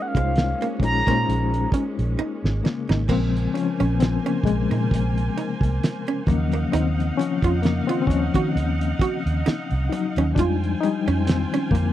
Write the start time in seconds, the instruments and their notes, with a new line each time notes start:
Already playing: reed electric piano G#3 C#4 D#4 F4 C5, string section G#3 A#3 C#4
0.02 soft synth lead F#5
0.08 soft synth lead F5
0.15 fingered electric bass C2, reed electric piano G#3 C#4 D#4 F4 C5, hollow-body jazz guitar G#3, kick, closed hi-hat
0.36 snare, closed hi-hat
0.62 hollow-body jazz guitar A#3, closed hi-hat
0.80 fingered electric bass A#1, reed electric piano G#3 C#4 D#4, muted hollow-body jazz guitar stroke, kick
0.84 reed electric piano F4 G#4, soft synth lead A#5, closed hi-hat
1.07 fingered electric bass A#2, reed electric piano G#3 C#4 D#4 F4 C5, hollow-body jazz guitar A#3, kick, snare, closed hi-hat
1.29 fingered electric bass A#1, closed hi-hat
1.54 closed hi-hat
1.72 hollow-body jazz guitar C#4, kick, closed hi-hat
1.99 fingered electric bass A#1, closed hi-hat
2.19 hollow-body jazz guitar D#4
2.44 fingered electric bass G#1, snare
2.64 reed electric piano C#3 A#3, muted hollow-body jazz guitar stroke, snare
2.89 fingered electric bass G#1, hollow-body jazz guitar D#4, snare
3.08 fingered electric bass A#1, reed electric piano C#3 F3 G#3 C4, string section A#3 A#4 C5 G#5, hollow-body jazz guitar A#3, kick, crash
3.37 closed hi-hat
3.54 reed electric piano F3 C#4, muted hollow-body jazz guitar stroke, closed hi-hat
3.80 fingered electric bass A#1, hollow-body jazz guitar C#4, closed hi-hat
3.95 reed electric piano B3
4.00 reed electric piano F3 C4, snare, closed hi-hat
4.24 reed electric piano C#3 A#3, hollow-body jazz guitar C#4, closed hi-hat
4.43 fingered electric bass A#1, reed electric piano G#3, muted hollow-body jazz guitar stroke, kick, closed hi-hat
4.48 reed electric piano C3
4.71 fingered electric bass A#2, hollow-body jazz guitar D#4, closed hi-hat
4.91 fingered electric bass A#1, kick, closed hi-hat
5.18 closed hi-hat
5.38 hollow-body jazz guitar D#4, closed hi-hat
5.61 fingered electric bass C2, kick, closed hi-hat
5.83 snare, closed hi-hat
6.07 hollow-body jazz guitar C#4, closed hi-hat
6.27 fingered electric bass D#2, reed electric piano C#3 F3 F#3 A#3 C#4, string section D#4 D#5 F5 F#5, muted hollow-body jazz guitar stroke, kick, closed hi-hat
6.52 hollow-body jazz guitar A#3, closed hi-hat
6.72 fingered electric bass D#2, reed electric piano D#3 C4, hollow-body jazz guitar D#4, closed hi-hat
7.00 closed hi-hat
7.17 reed electric piano F3 C#4, muted hollow-body jazz guitar stroke, closed hi-hat
7.42 fingered electric bass F2, hollow-body jazz guitar F4, kick, closed hi-hat
7.62 reed electric piano C#3 A#3, snare, closed hi-hat
7.87 reed electric piano D#3 C4, hollow-body jazz guitar F4, closed hi-hat
8.02 reed electric piano C4
8.07 fingered electric bass D#2, reed electric piano F3 C#4, muted hollow-body jazz guitar stroke, kick, closed hi-hat
8.34 fingered electric bass D#3, hollow-body jazz guitar F#4, kick, closed hi-hat
8.56 fingered electric bass D#2, closed hi-hat
8.81 closed hi-hat
8.99 hollow-body jazz guitar F#4, kick, closed hi-hat
9.26 fingered electric bass D#2, closed hi-hat
9.46 hollow-body jazz guitar D#4, muted fingered electric bass stroke, snare, closed hi-hat
9.71 fingered electric bass C2, closed hi-hat
9.89 reed electric piano F#3 D#4, muted hollow-body jazz guitar stroke, closed hi-hat
10.16 fingered electric bass D#2, hollow-body jazz guitar C#4, closed hi-hat
10.35 fingered electric bass F2, reed electric piano F3 G3 G#3 D4 D#4, string section F4 C5 G5 G#5, hollow-body jazz guitar F4, kick, closed hi-hat
10.64 closed hi-hat
10.81 reed electric piano G3 D#4, muted hollow-body jazz guitar stroke, closed hi-hat
11.08 fingered electric bass F2, hollow-body jazz guitar C#4, closed hi-hat
11.27 reed electric piano D#3 C4, snare, closed hi-hat
11.54 hollow-body jazz guitar C#4, closed hi-hat
11.71 fingered electric bass F2, reed electric piano D3 A#3, muted hollow-body jazz guitar stroke, kick
11.75 closed hi-hat